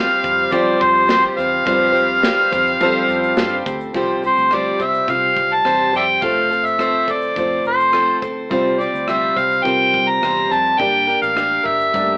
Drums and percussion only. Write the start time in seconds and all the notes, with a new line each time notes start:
0.24 kick, shaker
0.52 kick, shaker
0.81 kick, shaker
1.09 snare, shaker
1.39 shaker
1.67 kick, shaker
1.96 shaker
2.23 snare, shaker
2.53 kick, shaker
2.67 shaker
2.81 kick, shaker
3.09 shaker
3.24 shaker
3.37 snare, shaker
3.66 kick, shaker
3.80 shaker
3.94 kick, shaker
4.24 shaker
4.37 shaker
4.51 cross-stick, shaker
4.80 kick, shaker
4.94 shaker
5.08 kick, shaker
5.36 kick, shaker
5.65 cross-stick, shaker
5.94 cross-stick, shaker
6.22 kick, shaker
6.52 shaker
6.66 shaker
6.79 cross-stick, shaker
7.08 kick, shaker
7.22 shaker
7.36 kick, shaker
7.65 shaker
7.80 shaker
7.93 cross-stick, shaker
8.22 kick, shaker
8.51 kick, shaker
8.81 shaker
8.95 shaker
9.08 cross-stick, shaker
9.37 kick, shaker
9.51 shaker
9.65 kick, shaker
9.94 kick, shaker
10.23 cross-stick, shaker
10.52 shaker
10.65 shaker
10.80 kick, shaker
11.09 shaker
11.23 shaker
11.37 cross-stick, shaker
11.66 kick, shaker
11.81 shaker
11.94 kick, shaker